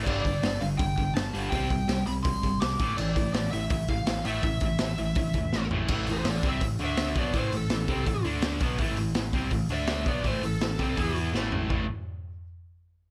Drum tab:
CC |x-------|--------|x-------|--------|
HH |-ooooooo|oooooooo|-ooooooo|oooooo--|
SD |--o---o-|--o---o-|--o---o-|--o---o-|
FT |--------|--------|--------|-------o|
BD |oo--oo--|oo--oo-o|-o--oo--|oo--oo--|

CC |x-------|--------|--------|--------|
HH |-ooooooo|oooooooo|oooooooo|oooooo--|
SD |--o---o-|--o---o-|--o---o-|--o---o-|
FT |--------|--------|--------|-------o|
BD |o--oo--o|o--oo--o|o--oo--o|o--oo---|

CC |--------|
HH |--------|
SD |--------|
FT |o-------|
BD |o-------|